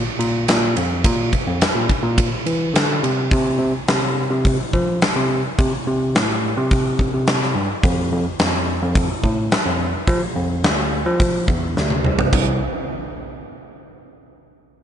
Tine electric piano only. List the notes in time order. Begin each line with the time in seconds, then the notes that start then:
0.19 A#2
0.49 A#2
0.77 F2
1.05 A#2
1.47 F2
1.75 A#2
2.03 A#2
2.46 E3
2.74 D3
3.03 C3
3.31 C3
3.59 C3
3.88 C3
4.31 C3
4.74 F3
5.16 C3
5.59 C3
5.87 C3
6.15 A2
6.58 C3
7.14 C3
7.55 G2
7.84 F2
8.12 F2
8.39 F2
8.82 F2
9.24 A2
9.66 F2
10.08 F3
10.36 F2
10.64 D2
11.06 F3
11.48 E2
11.77 D2
12.05 C2
12.33 C2